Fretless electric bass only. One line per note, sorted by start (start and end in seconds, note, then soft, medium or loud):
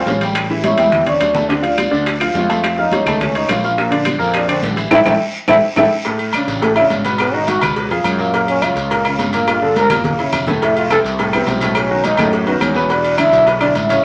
0.06 0.72 A1 medium
0.77 1.17 E2 medium
1.20 1.86 D2 medium
1.92 2.32 D2 loud
2.34 3.00 F2 medium
3.06 3.46 C#2 medium
3.49 4.15 A#1 loud
4.20 4.60 F2 loud
4.62 4.89 A1 loud
4.91 5.02 A1 medium
5.05 5.16 A1 loud
5.48 5.59 A1 loud
5.76 5.87 A1 loud
6.47 6.88 A1 medium
6.90 7.56 G#1 medium
7.61 7.88 C#2 medium
7.90 8.04 F2 medium
8.04 8.71 F#2 medium
8.75 9.16 C#2 loud
9.18 9.85 G1 medium
9.90 10.16 F#1 medium
10.19 10.32 F#1 medium
10.33 10.99 F1 medium
11.04 11.44 C2 loud
11.46 12.12 B1 loud
12.18 12.58 F#2 loud
12.61 13.27 E2 medium
13.32 13.72 B1 loud
13.75 14.02 A1 medium